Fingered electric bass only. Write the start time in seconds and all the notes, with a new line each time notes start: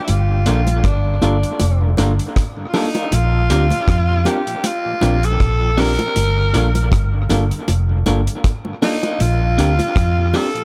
0.09 G1
0.47 A#1
0.84 G1
1.23 G1
1.61 F1
1.99 G1
3.13 A#1
3.51 D2
3.88 F2
5.02 A#1
5.41 A#1
6.17 G1
6.55 A#1
6.92 G1
7.31 G1
7.69 F1
8.07 G1
9.21 A#1
9.59 D2
9.96 F2